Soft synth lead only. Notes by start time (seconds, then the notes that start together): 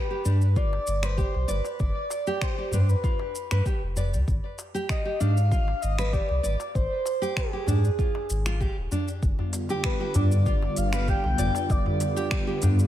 Already playing: B4
0.56 D5
1.04 C5
1.50 B4
1.80 D5
2.43 C5
2.74 B4
2.80 C5
2.88 B4
4.89 D#5
5.20 F5
5.82 D#5
6.12 D5
6.75 C5
7.36 G#4
9.84 B4
10.15 D5
10.77 F5
11.09 G5
11.71 D5